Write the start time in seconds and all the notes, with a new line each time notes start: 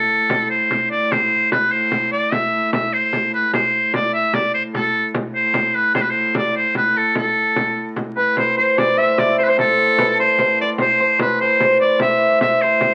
Already playing: A2 A4
0.10 frame drum
0.30 frame drum
0.50 C5
0.71 frame drum
0.91 D5, frame drum
1.11 C5, frame drum
1.52 B4, frame drum
1.72 C5
1.92 frame drum
2.12 D5, frame drum
2.32 E5, frame drum
2.52 frame drum
2.73 E5, frame drum
2.93 C5
3.13 frame drum
3.34 B4
3.53 A2 C5, frame drum
3.94 D5, frame drum
4.14 E5
4.33 D5, frame drum
4.54 C5, frame drum
4.75 A4, frame drum
4.94 frame drum
5.14 frame drum
5.35 C5
5.54 frame drum
5.74 B4, frame drum
5.95 C5, frame drum
6.02 B4
6.10 C5, frame drum
6.35 D5, frame drum
6.57 C5
6.75 B4, frame drum
6.97 A4
7.15 A4, frame drum
7.36 frame drum
7.56 frame drum
7.76 frame drum
7.96 frame drum
8.16 B4, frame drum
8.37 A2 C5, frame drum
8.58 C5
8.78 D5, frame drum
8.97 E5
9.18 D5, frame drum
9.38 C5
9.44 B4 C5
9.49 C5
9.58 A4, frame drum
9.78 frame drum
9.98 B4, frame drum
10.19 C5
10.38 C5, frame drum
10.61 D5
10.78 C5, frame drum
11.00 C5
11.19 B4, frame drum
11.41 C5
11.60 C5, frame drum
11.80 D5
12.00 E5, frame drum
12.41 E5, frame drum
12.62 C5
12.81 frame drum